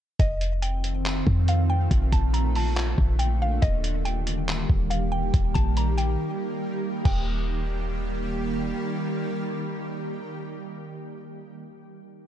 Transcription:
0.20 F1 D#3 A3 C4 F4 D#5, kick, closed hi-hat
0.41 closed hi-hat
0.62 G5, closed hi-hat
0.84 closed hi-hat
1.05 clap, closed hi-hat
1.27 F2, kick
1.48 F5, closed hi-hat
1.70 G5
1.91 A#1 D3 A#3, kick, closed hi-hat
2.12 A#1 A5, kick, closed hi-hat
2.34 A#5, closed hi-hat
2.55 A5, open hi-hat
2.76 clap, closed hi-hat
2.98 A#1, kick
3.19 G5, closed hi-hat
3.42 F5
3.62 D#1 D#3 G3 G4 D#5, kick, closed hi-hat
3.84 closed hi-hat
4.05 G5, closed hi-hat
4.27 closed hi-hat
4.48 clap, closed hi-hat
4.70 D#1, kick
4.90 F5, closed hi-hat
5.12 G5
5.34 D#1, kick, closed hi-hat
5.54 A#1 A5, kick, closed hi-hat
5.77 A#5, closed hi-hat
5.98 G5, closed hi-hat
7.05 D#1 D#3 G3 A#3 G4 G5, kick, crash

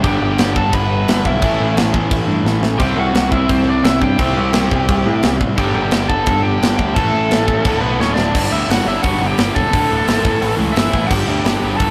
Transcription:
0.01 G1 G2 D3 G3 B3 D4 G4, kick, crash
0.07 G5
0.20 G1 G4 G5
0.38 G1, snare, crash
0.56 G1 A4 A5, kick
0.73 G1 B4 B5, kick, crash
1.08 G1, snare, crash
1.25 B1 E4 E5, kick
1.41 A1 A2 E3 A3 C#4 E4 A4, kick, crash
1.60 A1
1.76 A1, snare, crash
1.94 A1, kick
2.11 A1, kick, crash
2.26 G2
2.44 A1, snare
2.60 A1, snare
2.77 C2 C3 G3 C4 E4 G4 C5, kick, crash
2.82 G5
2.96 C2 F#4 F#5
3.14 C2, snare, crash
3.31 C2 E4 E5, kick
3.49 C2 C4 C5, kick, crash
3.68 D4 D5
3.83 C2 E4 E5, snare, crash
4.01 G2 G4 G5, kick
4.18 C2 C3 G3 C4 E4 G4 C5, kick, crash
4.37 C2
4.53 C2, snare, crash
4.71 C2, kick
4.88 C2, kick, crash
5.05 A2
5.22 C2, snare, crash
5.41 A1, kick
5.57 G1 G2 D3 G3 B3 D4 G4 G5, kick, crash
5.75 G1 G4 G5
5.91 G1, snare, crash
6.09 G1 A4 A5, kick
6.26 G1, kick, crash
6.43 G4 G5
6.61 G1, snare, crash
6.77 D2 G4 G5, kick
6.94 A1 A2 E3 A3 C#4 E4 A4 A5, kick, crash
7.13 A1
7.30 A1, snare, crash
7.48 A1, kick
7.63 D1 D2 A2 D3 A3 F#4, kick, crash
7.81 B1 B3 B4
7.98 D1 C#4 C#5, snare
8.14 D1 D4 D5
8.18 snare
8.34 G1 G2 D3 G3, kick, crash
8.52 D2 G2 D3 G3 E4 E5
8.68 G1 G2 D3 G3 F#4 F#5, snare, open hi-hat
8.86 G1 G2 D3 G3 E4 E5
9.02 G1 G2 D3 G3 F#4 F#5, kick, open hi-hat
9.19 G1 G2 D3 G3
9.27 G4 G5
9.37 G1 G2 D3 G3, snare, open hi-hat
9.53 E1 G2 D3 G3 A4 A5, kick
9.70 D1 D2 A2 D3, kick, open hi-hat
9.88 D1 D2 A2 D3
10.06 G#1 D2 A2 D3, snare, open hi-hat
10.22 A1 A2 E3 A3, kick
10.40 A1 A2 E3 A3, open hi-hat
10.56 C#2 A2 E3 A3
10.72 G1 A2 E3 A3 E4 E5, open hi-hat
10.77 A2 A3, snare
10.90 A1 A2 E3 A3, kick
10.94 A2
11.07 G1 G2 D3 G3 G4 G5
11.11 kick, crash
11.25 D2 G2 D3 G3
11.43 G1 G2 D3 G3, snare, open hi-hat
11.60 G1 G2 D3 G3
11.76 G1 G2 D3 G3 A4 A5, kick, open hi-hat

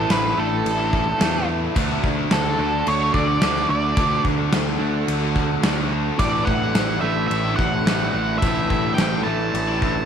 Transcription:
Already playing: A2 E3 A3 D4 E4 A4
0.08 A1 A2 E3 A3 D4 E4 B4, snare, crash
0.36 A1 A2 E3 A3 D4 E4 A4
0.51 muted overdriven electric guitar stroke
0.66 A1, crash
0.77 A3 D4 E4
0.91 E3 A3 D4 E4, kick
1.05 muted overdriven electric guitar stroke
1.18 E2 A2 E3 A3 D4 E4, snare, crash
1.46 E3 A3 D4 E4
1.74 D2 D3 A3 D4 F#4 A4, kick, crash
2.04 D2, kick
2.15 A3 D4 F#4
2.30 D2 D3 A3 D4 F#4 A4, snare, crash
2.57 D2 D3 A3 D4 F#4
2.72 muted overdriven electric guitar stroke
2.87 D2 C#5, crash
2.98 A3 D4 F#4
3.12 D2 D3 A3 D4 F#4 D5, kick
3.28 muted overdriven electric guitar stroke
3.40 D2 D3 A3 D4 F#4, snare, crash
3.56 snare
3.68 D2 D3 A3 D4 F#4 D5
3.96 D2 D3 A3 D4 F#4 A4, kick, crash
4.24 D2, kick
4.37 A3 D4 F#4
4.51 D2 D3 A3 D4 F#4, snare, crash
4.79 D2 D3 A3 D4 F#4
4.93 muted overdriven electric guitar stroke
5.08 D2, crash
5.20 A3 D4 F#4
5.33 D3 A3 D4 F#4, kick
5.49 muted overdriven electric guitar stroke
5.61 D2 D3 A3 D4 F#4, snare, crash
5.90 D3 A3 D4 F#4
6.17 A1 A2 D3 E3 A3 D4 E4 A4 D5, kick, crash
6.45 A1 F#5, kick
6.60 A3 D4 E4
6.74 A1 A2 D3 A3 D4 E4, snare, crash
7.01 A1 A2 D3 E3 A3 D4 E4 E5
7.16 muted overdriven electric guitar stroke
7.28 A1 E5, crash
7.44 A3 D4 E4
7.56 A1 D3 A3 D4 F#5, kick
7.61 E4
7.72 muted overdriven electric guitar stroke
7.86 A1 A2 D3 E3 A3 D4 E4, snare, crash
8.13 A1 D3 A3 D4 E4
8.38 A2 A3 D4 E4 A4 E5
8.42 A1 D3 E3 A3 D4 E4, kick, crash
8.70 A1, kick
8.84 A3 D4 E4
8.94 A2 D3 G5
8.98 A1 A3 D4 E4, snare, crash
9.24 A1 D3 E3 A3 D4 A5
9.28 A2 E4
9.40 muted overdriven electric guitar stroke
9.54 A1, crash
9.68 A3 D4 E4
9.81 D3 A3 D4 E4, kick
9.96 muted overdriven electric guitar stroke

